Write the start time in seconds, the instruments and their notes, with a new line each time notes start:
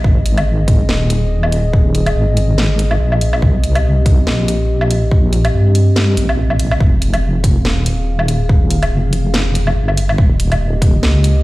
Already playing: analog synth pad D#5
0.04 wobble bass G#1, analog synth pad C4 G#4, kick
0.26 closed hi-hat
0.38 closed hi-hat, low woodblock
0.68 kick, closed hi-hat
0.89 wobble bass D#1, snare
1.10 closed hi-hat
1.43 low woodblock
1.52 closed hi-hat
1.73 kick
1.95 closed hi-hat
2.06 closed hi-hat, low woodblock
2.16 wobble bass G#1
2.37 closed hi-hat
2.58 snare
2.79 closed hi-hat
2.91 low woodblock
3.00 wobble bass A#1
3.12 low woodblock
3.21 closed hi-hat
3.33 low woodblock
3.42 wobble bass C2, analog synth pad G4, kick
3.64 closed hi-hat
3.75 closed hi-hat, low woodblock
4.06 kick, closed hi-hat
4.27 wobble bass A#1, snare
4.48 closed hi-hat
4.81 low woodblock
4.91 closed hi-hat
5.11 kick
5.33 closed hi-hat
5.45 closed hi-hat, low woodblock
5.54 wobble bass G2
5.75 closed hi-hat
5.96 snare
6.17 wobble bass A#1, closed hi-hat
6.29 low woodblock
6.50 low woodblock
6.59 closed hi-hat
6.71 low woodblock
6.80 wobble bass F1, analog synth pad G#4 F5, kick
7.02 closed hi-hat
7.14 closed hi-hat, low woodblock
7.44 kick, closed hi-hat
7.65 wobble bass D#1, snare
7.86 closed hi-hat
8.19 low woodblock
8.28 closed hi-hat
8.49 kick
8.70 closed hi-hat
8.83 closed hi-hat, low woodblock
8.92 wobble bass F1
9.13 closed hi-hat
9.34 snare
9.55 closed hi-hat
9.67 low woodblock
9.76 wobble bass G1
9.88 low woodblock
9.97 closed hi-hat
10.09 low woodblock
10.18 wobble bass D#1, analog synth pad A#3 G4 D#5, kick
10.40 closed hi-hat
10.52 closed hi-hat, low woodblock
10.82 kick, closed hi-hat
11.03 wobble bass C#2, snare
11.24 closed hi-hat